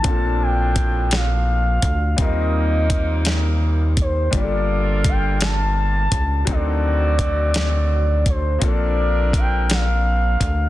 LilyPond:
<<
  \new Staff \with { instrumentName = "Soft synth lead" } { \time 6/8 \key bes \major \tempo 4. = 56 a''8 g''4 f''4. | ees''2 r8 c''8 | d''4 g''8 a''4. | d''2~ d''8 c''8 |
d''4 g''8 f''4. | }
  \new Staff \with { instrumentName = "Grand piano" } { \time 6/8 \key bes \major <bes, c' d' f' a'>2. | <g c' ees' f' bes'>2. | <g bes d' f' g' a'>2. | <fis c' d' ees' a'>2. |
<bes c' d' f' a'>2. | }
  \new Staff \with { instrumentName = "Horn section" } { \time 6/8 \key bes \major <a, f d'>2~ <a, f d'>8 r8 | <c bes ees'>2~ <c bes ees'>8 r8 | <d bes f'>2~ <d bes f'>8 r8 | <ees c' fis'>2~ <ees c' fis'>8 r8 |
<f d' bes'>2~ <f d' bes'>8 r8 | }
  \new Staff \with { instrumentName = "Analog synth bass" } { \clef bass \time 6/8 \key bes \major bes,,2~ bes,,8 d,8 | ees,2. | g,,2~ g,,8 cis,8 | d,2. |
bes,,2~ bes,,8 d,8 | }
  \new DrumStaff \with { instrumentName = "Drums" } \drummode { \time 6/8 <hh bd>4 <hh bd>8 <hh sn>4 <hh bd>8 | <hh bd>4 <hh bd>8 <hh sn>4 <hh bd>8 | <hh bd>4 <hh bd>8 <hh sn>4 <hh bd>8 | <hh bd>4 <hh bd>8 <hh sn>4 <hh bd>8 |
<hh bd>4 <hh bd>8 <hh sn>4 <hh bd>8 | }
>>